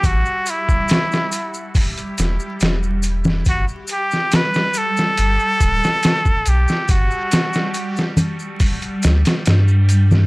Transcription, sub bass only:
X:1
M:4/4
L:1/8
Q:1/4=70
K:G
V:1 name="Sub bass" clef=bass
A,,, z4 E,,, E,,,2 | G,,, z3 G,,, D,,, z B,,, | G,,, z4 D,, G,,2 |]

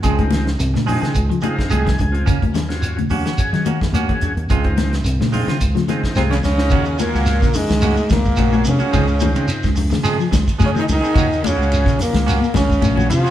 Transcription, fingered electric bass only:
X:1
M:4/4
L:1/16
Q:"Swing 16ths" 1/4=108
K:Ebdor
V:1 name="Fingered electric bass" clef=bass
D,,4 C,, B,,2 D, D,, D,2 z C,,2 D,,2 | E,,6 E,, z2 E,3 E,, z E,, E,, | D,,4 C,, B,,2 D, D,, D,2 z C,,2 D,,2 | E,,3 D,,2 B,,, z D,,2 z D,,2 B,,,2 C, z |
D,,3 D, z D,,2 D,2 z D,, z D, z D,, z | E,,3 D,,2 B,,, z D,,2 z D,,2 B,,,2 C, z |]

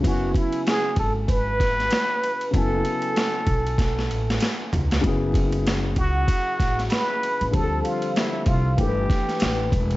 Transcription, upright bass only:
X:1
M:4/4
L:1/16
Q:"Swing 16ths" 1/4=96
K:F#m
V:1 name="Upright bass" clef=bass
F,,,2 z4 G,,,6 z4 | F,,,2 z4 B,,,4 A,,,2 z2 C,,2 | F,,,6 C,,2 z2 A,,,2 z3 A,,, | D,,2 z4 =C,,2 =G,,,2 z2 A,,,2 E,,,2 |]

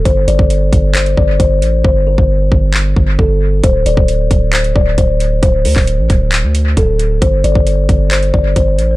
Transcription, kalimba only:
X:1
M:4/4
L:1/8
Q:1/4=134
K:Gdor
V:1 name="Kalimba"
c d3 c d c2 | c B4- B A z | c d3 c d c2 | c B4- B A z |
c d3 c d c2 |]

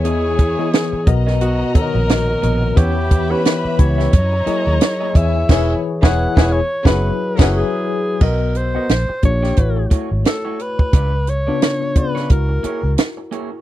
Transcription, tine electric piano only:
X:1
M:4/4
L:1/16
Q:"Swing 16ths" 1/4=88
K:B
V:1 name="Tine electric piano"
[E,B,Gc]2 z [E,B,Gc]2 z [B,,B,Ad]3 z [D,B,Acd]3 z [B,,B,Ad]2 | [E,B,=Gc]2 z [E,B,Gc]2 z [E,B,Gc]2 z2 [F,E^GAd]4 [E,EGc]2 | [E,EGc]2 z [E,EGc]2 [E,EGc]2 z [F,EGB]2 z [F,EGB]2 z3 | [B,FAd]2 z [B,FAd] z2 [A,=D^E=G]2 [=A,=EFc]6 z2 |
z3 [C,B,=D^E]2 z [C,B,E=d]2 [=EFA]6 z2 |]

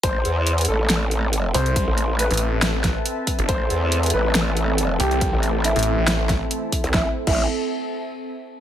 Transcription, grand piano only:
X:1
M:4/4
L:1/16
Q:"Swing 16ths" 1/4=139
K:Am
V:1 name="Grand piano"
c4- c z A6- A z c2- | c3 z B8- B3 z | c4- c z B6- B z G2- | G3 z E8- E3 z |
E z2 E2 z8 z3 |]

